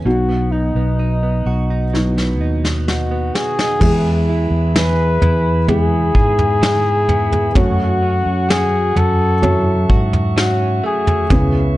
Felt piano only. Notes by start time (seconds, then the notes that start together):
0.05 B2 F#3 B3 D#4 F#4
1.94 F#3 B3 D#4 F#4
3.80 E3 G#3 B3 E4 G4
3.87 G#4
5.68 G#3 B3 E4 G#4
7.55 A3 C#4 F#4 C#5
9.42 F#3 C#4 F#4 C#5
11.30 C#3 B3 C#4 E4 G#4